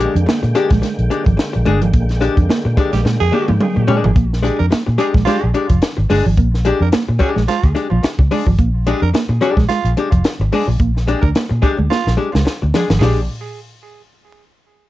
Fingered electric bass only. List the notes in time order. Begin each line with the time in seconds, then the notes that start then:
0.15 F2
0.29 muted fingered electric bass stroke
0.43 A#2
0.71 A#1
0.99 A#1
1.26 G#1
1.56 A#1
1.66 G1
1.82 G#1
1.94 A#1
2.37 F2
2.49 muted fingered electric bass stroke
2.65 A#2
2.93 A#1
3.05 A#2
3.21 F2
3.50 G#2
3.77 A#2
4.04 G#1
4.16 A#1
4.60 F2
4.73 muted fingered electric bass stroke
4.88 A#2
5.15 A#1
5.44 A#1
5.70 F1
5.98 G#1
6.10 G1
6.26 G#1
6.38 A#1
6.81 F2
6.94 muted fingered electric bass stroke
7.09 A#2
7.36 A#1
7.64 D2
7.92 A#1
8.19 C#2
8.47 G#1
8.59 A#1
9.02 F2
9.14 muted fingered electric bass stroke
9.29 A#2
9.57 A#1
9.84 A#1
10.12 F1
10.40 G#1
10.68 A#1
10.80 A#1
11.23 D2
11.51 A#2
11.78 D2
12.07 A#1
12.35 C#2
12.63 D2
12.90 G#1
13.01 A#1